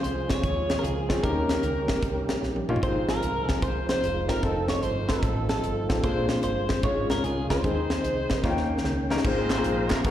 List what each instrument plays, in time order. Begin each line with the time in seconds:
Already playing: grand piano C#3, tonewheel organ F3 G#3 F4 G#4
0.03 fretless electric bass C2, horn section F4 G#4 C5, clean electric guitar C5, closed hi-hat
0.29 clean electric guitar C#5, kick, snare, closed hi-hat
0.43 fretless electric bass D#2, horn section F4 G#4 C#5, kick, closed hi-hat
0.70 snare, closed hi-hat
0.79 clean electric guitar A#4
0.83 fretless electric bass C#2, horn section C4 F4 G#4, clean electric guitar G#4, closed hi-hat
1.09 grand piano C4 C#4 F4 G#4, kick, snare, closed hi-hat
1.22 fretless electric bass D#2, tonewheel organ D#3 G3 A#3 C#4 G4, grand piano D#3 A#3 C#4 D#4 G4, horn section C#4 G4 A#4, clean electric guitar A#4, kick, closed hi-hat
1.49 snare, closed hi-hat
1.63 fretless electric bass C#2, closed hi-hat
1.88 kick, snare, closed hi-hat
2.02 fretless electric bass C2, kick, closed hi-hat
2.29 snare, closed hi-hat
2.43 fretless electric bass A#1, snare
2.56 high tom
2.69 grand piano A#3 C#4 D#4 F4, mid tom
2.76 floor tom
2.82 fretless electric bass G#1, grand piano G#2 C4 F4 G#4, tonewheel organ F3 G#3 C4 F4, horn section D#4 F4 C5, clean electric guitar C5, kick, closed hi-hat
3.09 horn section D#4 F4 A#4, clean electric guitar A#4, snare, closed hi-hat
3.23 fretless electric bass C2, closed hi-hat
3.48 fretless electric bass C#2, clean electric guitar G#4, kick, snare, closed hi-hat
3.62 fretless electric bass C2, horn section D#4 F4 C5, clean electric guitar C5, kick, closed hi-hat
3.89 horn section D#4 F4 C5, clean electric guitar C5, snare, closed hi-hat
4.03 fretless electric bass F1, closed hi-hat
4.28 fretless electric bass G1, grand piano C4 D#4 F4 A#4, clean electric guitar A#4, horn section A#4, kick, snare, closed hi-hat
4.43 fretless electric bass F1, tonewheel organ D#3 A3, grand piano C4 D#4 F4 A4, horn section C4 D#4 A4, clean electric guitar A4, kick, closed hi-hat
4.68 clean electric guitar C#5, horn section C#5, snare, closed hi-hat
4.83 fretless electric bass G1, clean electric guitar C5, horn section C5, closed hi-hat
5.09 horn section C4 D#4 A4, clean electric guitar A4, kick, snare, closed hi-hat
5.22 fretless electric bass A1, kick, closed hi-hat
5.49 horn section C4 D#4 A4, clean electric guitar A4, snare, closed hi-hat
5.63 fretless electric bass G1, closed hi-hat
5.89 fretless electric bass A1, grand piano C4 D#4 F4 A4, kick, snare, closed hi-hat
6.03 grand piano A#2 A#3 D4 F4 G#4, tonewheel organ D3 G#3 A#3, horn section F4 G#4 C5, clean electric guitar C5, kick, closed hi-hat
6.29 clean electric guitar C5, horn section C5, snare, closed hi-hat
6.43 fretless electric bass G1, horn section F4 G#4 C5, clean electric guitar C5, closed hi-hat
6.69 kick, snare, closed hi-hat
6.83 fretless electric bass G#1, grand piano G#2 G#3 C#4 F4 G#4, tonewheel organ C#4, horn section F4 G#4 C#5, clean electric guitar C#5, kick, closed hi-hat
7.10 fretless electric bass C2, clean electric guitar A#4, snare, closed hi-hat
7.24 fretless electric bass C2, horn section C#4 F4 G#4, clean electric guitar G#4, closed hi-hat
7.50 fretless electric bass C#2, grand piano G#3 C#4 F4 A#4, clean electric guitar C5, kick, snare, closed hi-hat
7.64 fretless electric bass D#2, grand piano D#3 G#3 C4 D#4 G#4, tonewheel organ G#3 C4 D#4, horn section D#4 G#4 C5, kick, closed hi-hat
7.90 snare, closed hi-hat
8.04 fretless electric bass C2, closed hi-hat
8.30 kick, snare, closed hi-hat
8.38 clean electric guitar A#4
8.44 fretless electric bass D#2, tonewheel organ D#3 A#3 C#4 G5, grand piano D#3 A#3 C#4 D#4 F4, kick, snare
8.50 grand piano G5
8.57 snare
8.78 snare
8.84 fretless electric bass C#2, snare
9.10 grand piano A#3 C#4 D#4 A#4, snare
9.17 snare
9.24 fretless electric bass G#1, grand piano G#2 A#3 C4 F4 G#4, horn section D#4 F4 C5, tonewheel organ G#4 C5 F5 A#5, kick, crash
9.50 snare, clap, closed hi-hat
9.57 grand piano A#3 C4 F4 G#4
9.64 fretless electric bass A#1, closed hi-hat
9.90 horn section A#4, kick, snare, clap, closed hi-hat
10.04 fretless electric bass G#1, grand piano G#2 B3 D#4 F#4 G#4, horn section D#4 F#4 A#4, tonewheel organ G#4 D#5 F#5 C6, kick, closed hi-hat